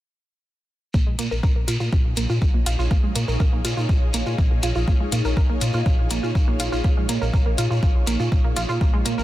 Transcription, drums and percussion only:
0.94 kick loud
0.94 shekere soft
1.19 closed hi-hat medium
1.19 shekere medium
1.31 shekere soft
1.43 kick loud
1.43 shekere soft
1.68 closed hi-hat medium
1.68 shekere medium
1.80 shekere soft
1.92 kick loud
1.92 shekere soft
2.16 closed hi-hat loud
2.16 shekere medium
2.29 shekere medium
2.41 kick loud
2.41 shekere soft
2.66 closed hi-hat medium
2.66 shekere medium
2.79 shekere soft
2.90 kick loud
2.90 shekere soft
3.16 closed hi-hat loud
3.16 shekere medium
3.28 shekere soft
3.40 kick loud
3.40 shekere soft
3.65 closed hi-hat medium
3.65 shekere loud
3.77 shekere soft
3.89 kick loud
3.89 shekere soft
4.14 closed hi-hat loud
4.14 shekere medium
4.26 shekere medium
4.38 kick loud
4.38 shekere soft
4.63 closed hi-hat medium
4.63 shekere medium
4.75 shekere medium
4.88 kick loud
4.88 shekere soft
5.12 closed hi-hat loud
5.12 shekere medium
5.25 shekere medium
5.37 kick loud
5.37 shekere soft
5.61 closed hi-hat medium
5.61 shekere medium
5.73 shekere soft
5.86 kick loud
5.86 shekere soft
6.10 closed hi-hat loud
6.10 shekere medium
6.23 shekere medium
6.35 kick loud
6.35 shekere soft
6.60 closed hi-hat loud
6.60 shekere loud
6.72 shekere soft
6.84 kick loud
6.84 shekere soft
7.09 closed hi-hat loud
7.09 shekere medium
7.22 shekere soft
7.33 kick loud
7.33 shekere soft
7.58 closed hi-hat medium
7.58 shekere medium
7.71 shekere soft
7.82 kick loud
7.82 shekere soft
8.07 closed hi-hat loud
8.07 shekere loud
8.19 shekere medium
8.32 kick loud
8.32 shekere soft
8.56 closed hi-hat medium
8.56 shekere medium
8.69 shekere medium
8.81 kick loud
8.81 shekere soft
9.05 closed hi-hat loud
9.05 shekere medium
9.19 shekere medium

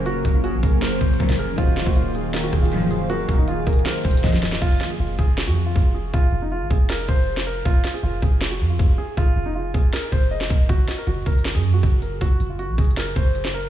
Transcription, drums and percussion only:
0.06 closed hi-hat medium
0.25 kick loud
0.25 closed hi-hat medium
0.44 closed hi-hat medium
0.63 kick loud
0.63 open hi-hat medium
0.82 snare loud
0.82 closed hi-hat loud
1.01 kick medium
1.01 closed hi-hat soft
1.07 closed hi-hat medium
1.14 closed hi-hat medium
1.20 kick loud
1.20 closed hi-hat medium
1.29 snare loud
1.39 closed hi-hat medium
1.58 kick loud
1.58 closed hi-hat medium
1.77 snare medium
1.77 closed hi-hat medium
1.86 kick medium
1.96 closed hi-hat medium
2.15 closed hi-hat medium
2.34 snare loud
2.34 closed hi-hat medium
2.53 kick medium
2.53 closed hi-hat soft
2.59 closed hi-hat medium
2.65 closed hi-hat medium
2.72 closed hi-hat medium
2.91 closed hi-hat medium
3.10 closed hi-hat medium
3.29 kick loud
3.29 closed hi-hat medium
3.48 closed hi-hat medium
3.67 kick loud
3.67 closed hi-hat medium
3.67 open hi-hat medium
3.73 closed hi-hat medium
3.79 closed hi-hat medium
3.86 snare loud
3.86 closed hi-hat loud
4.05 kick medium
4.05 closed hi-hat medium
4.11 closed hi-hat medium
4.17 closed hi-hat medium
4.24 kick loud
4.24 snare medium
4.24 closed hi-hat medium
4.33 snare medium
4.43 snare loud
4.43 open hi-hat medium
4.52 snare loud
4.62 kick loud
4.62 crash medium
4.81 snare medium
5.19 kick loud
5.38 snare loud
5.76 kick loud
6.14 kick loud
6.71 kick loud
6.90 snare loud
7.08 kick medium
7.37 snare loud
7.65 kick loud
7.84 snare medium
8.22 kick loud
8.41 snare loud
8.79 kick loud
9.17 kick loud
9.74 kick loud
9.93 snare loud
10.12 kick medium
10.41 snare loud
10.50 kick loud
10.69 kick loud
10.69 closed hi-hat medium
10.88 snare medium
10.88 closed hi-hat medium
11.07 closed hi-hat medium
11.26 kick loud
11.26 closed hi-hat medium
11.32 closed hi-hat medium
11.39 closed hi-hat medium
11.45 snare loud
11.45 closed hi-hat medium
11.64 closed hi-hat medium
11.83 kick medium
11.83 closed hi-hat medium
12.02 closed hi-hat medium
12.21 kick loud
12.21 closed hi-hat medium
12.40 closed hi-hat medium
12.59 closed hi-hat medium
12.78 kick loud
12.78 closed hi-hat medium
12.84 closed hi-hat medium
12.91 closed hi-hat medium
12.97 snare loud
12.97 closed hi-hat medium
13.16 kick medium
13.16 closed hi-hat medium
13.35 closed hi-hat medium
13.45 snare loud
13.54 closed hi-hat medium

